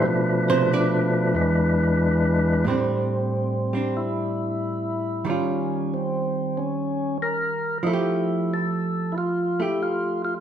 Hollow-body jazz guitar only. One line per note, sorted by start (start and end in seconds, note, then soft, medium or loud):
0.50 0.71 C3 medium
0.50 0.70 C5 loud
0.73 0.99 D4 medium
0.73 0.99 D5 medium
2.65 5.25 A2 soft
2.65 3.72 G3 soft
2.65 3.73 C4 soft
2.70 3.75 D4 soft
3.73 5.25 G3 soft
3.73 5.26 C4 soft
3.73 5.27 D4 soft
5.25 7.85 D#3 soft
5.25 7.82 G3 soft
5.30 7.88 F4 medium
7.83 10.40 F3 medium
7.83 9.59 A3 medium
7.93 9.61 G4 medium
9.60 10.40 A3 soft
9.60 10.40 G4 soft